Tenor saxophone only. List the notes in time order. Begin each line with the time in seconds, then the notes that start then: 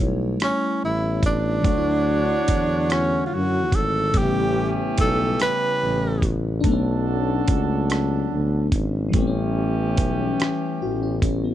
0.43 C#4
0.85 E4
1.26 D4
2.92 C#4
3.26 F4
3.34 F#4
3.75 A4
4.18 G4
5.01 A4
5.42 B4